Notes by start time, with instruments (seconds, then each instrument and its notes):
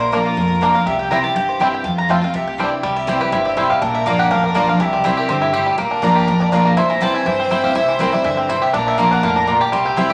Already playing: upright bass A#1, steel-string acoustic guitar A#2, fiddle A#4
0.00 mandolin C5
0.12 steel-string acoustic guitar F3 A#3 D4 F4, mandolin A#3 F4 A#4 D5 A#5, five-string banjo A#3 D4
0.25 mandolin F4
0.37 upright bass F1, steel-string acoustic guitar F2
0.61 steel-string acoustic guitar F3 A#3 D4 F4, mandolin A#3 F4 D5 A#5, five-string banjo A#3 D4
0.74 steel-string acoustic guitar D4 F4, mandolin F5
0.86 upright bass C2, steel-string acoustic guitar C3, fiddle G4, mandolin E5
0.99 mandolin G5
1.10 steel-string acoustic guitar E3 G3 C4 E4, five-string banjo G3 C4 E4, mandolin C4 E4 C5 G5 A#5
1.24 steel-string acoustic guitar C4 E4, mandolin A5
1.35 upright bass G1, steel-string acoustic guitar G2, mandolin G5
1.49 mandolin C5
1.60 steel-string acoustic guitar E3 G3 C4 E4, five-string banjo G3 C4 E4, mandolin C4 E4 C5 E5 G5
1.74 mandolin G5
1.84 steel-string acoustic guitar F2, upright bass F2, fiddle F4, mandolin A5
1.98 mandolin A#5
2.09 steel-string acoustic guitar F3 A3 C4 F4, five-string banjo A3 C4 F4, mandolin C4 F4 C5 G5 A5
2.21 steel-string acoustic guitar C4 F4, mandolin F5
2.34 upright bass C2, steel-string acoustic guitar C3, fiddle G4, mandolin E5
2.47 mandolin G5
2.58 steel-string acoustic guitar E3 G3 D4 E4, five-string banjo G3 C4 D4, mandolin C4 E4 D5 G5
2.83 upright bass C2, steel-string acoustic guitar C3, five-string banjo G3, fiddle G4
2.96 mandolin E5
3.07 steel-string acoustic guitar E3 G3 C4 E4, mandolin C4 E4 C5 D5 G5, five-string banjo E4
3.20 steel-string acoustic guitar C4 E4, five-string banjo G4, mandolin B4
3.32 upright bass G1, steel-string acoustic guitar G2, five-string banjo E4, mandolin C5
3.45 five-string banjo C4, mandolin D5
3.57 steel-string acoustic guitar C3, mandolin C4 E4 C5 E5 G5, five-string banjo E4
3.70 five-string banjo G3, mandolin F5
3.81 upright bass A#1, steel-string acoustic guitar A#2, five-string banjo D4, fiddle A#4, mandolin D5
3.95 mandolin E5
4.06 upright bass G1, steel-string acoustic guitar F3 A#3 D4 F4, mandolin A#3 F4 D5 F5 A#5, five-string banjo A#3
4.19 five-string banjo G4, mandolin F#5
4.31 upright bass A1, steel-string acoustic guitar F2, five-string banjo D4, mandolin F5
4.44 five-string banjo D4, mandolin A#4
4.54 upright bass A#1, steel-string acoustic guitar F3 A#3 D4 F4, five-string banjo A#3, mandolin A#3 F4 D5 A#5
4.67 five-string banjo D4, steel-string acoustic guitar D4 F4, mandolin F5
4.80 upright bass C2, steel-string acoustic guitar C3, five-string banjo E3, fiddle G4, mandolin E5
4.93 five-string banjo C4, mandolin D5
5.04 steel-string acoustic guitar E3 G3 C4 E4, mandolin C4 E4 C5 G5, five-string banjo E4
5.17 five-string banjo G4, mandolin A#4
5.29 upright bass G2, steel-string acoustic guitar D3, five-string banjo C4, mandolin C5
5.42 five-string banjo E4
5.53 steel-string acoustic guitar A2, mandolin C4 E4 C5 G5, five-string banjo G4
5.66 five-string banjo G3
5.78 upright bass A#1, steel-string acoustic guitar A#2, five-string banjo A#3, fiddle A#4
5.91 five-string banjo D4
6.02 upright bass G1, steel-string acoustic guitar F3 A#3 D4 F4, mandolin A#3 F4 D5 A#5, five-string banjo D4
6.16 five-string banjo G4
6.27 upright bass A1, steel-string acoustic guitar F2, five-string banjo D4
6.40 five-string banjo D4, mandolin D5
6.52 upright bass A#1, steel-string acoustic guitar F3 A#3 D4 F4, mandolin A#3 F4 D5 F5 A#5, five-string banjo D4
6.65 five-string banjo A#3, mandolin A#5
6.77 upright bass C2, steel-string acoustic guitar C3, five-string banjo E4, fiddle C5, mandolin C6
6.90 five-string banjo E3, mandolin A#5
7.01 steel-string acoustic guitar E3 G3 C4 E4, five-string banjo G3, mandolin C4 E4 C5 G5 A5
7.14 five-string banjo E4, mandolin G#5
7.26 upright bass G2, steel-string acoustic guitar G2, five-string banjo E3, mandolin G5
7.40 five-string banjo C4
7.50 steel-string acoustic guitar E3 G3 C4 E4, mandolin C4 E4 C5 G5, five-string banjo E4
7.64 steel-string acoustic guitar C4 E4, five-string banjo G4, mandolin F5
7.75 upright bass C2, steel-string acoustic guitar C3, five-string banjo E4, mandolin E5
7.88 five-string banjo E3, mandolin C5
7.99 steel-string acoustic guitar E3 G3 C4 E4, five-string banjo G3, mandolin C4 E4 A#4 C5 G5
8.12 steel-string acoustic guitar C4 E4, five-string banjo E4, mandolin D5
8.24 upright bass G2, steel-string acoustic guitar D3, five-string banjo E3, mandolin E5
8.37 five-string banjo C4, mandolin G4
8.49 steel-string acoustic guitar C3, mandolin C4 E4 C5 G5, five-string banjo E4
8.62 five-string banjo G4, mandolin E5
8.74 upright bass A#1, steel-string acoustic guitar A#2, five-string banjo D4, fiddle A#4, mandolin D5
8.87 five-string banjo D3, mandolin E5
8.98 steel-string acoustic guitar F3 A#3 D4 F4, mandolin A#3 F4 D5 F5 A#5, five-string banjo A#3
9.11 five-string banjo D4, mandolin F#5
9.23 upright bass F1, steel-string acoustic guitar A2, five-string banjo D3, mandolin F5
9.36 five-string banjo D4, mandolin A#5
9.47 steel-string acoustic guitar A#2, mandolin A#3 F4 D5 A#5, five-string banjo D4
9.61 five-string banjo G4, mandolin D6
9.72 upright bass C2, steel-string acoustic guitar C3, five-string banjo G3, fiddle G4, mandolin C6
9.85 five-string banjo C4, mandolin G5
9.96 steel-string acoustic guitar E3 G3 C4 E4, mandolin C4 E4 C5 E5 G5, five-string banjo E4
10.09 steel-string acoustic guitar E4, five-string banjo G4, mandolin D5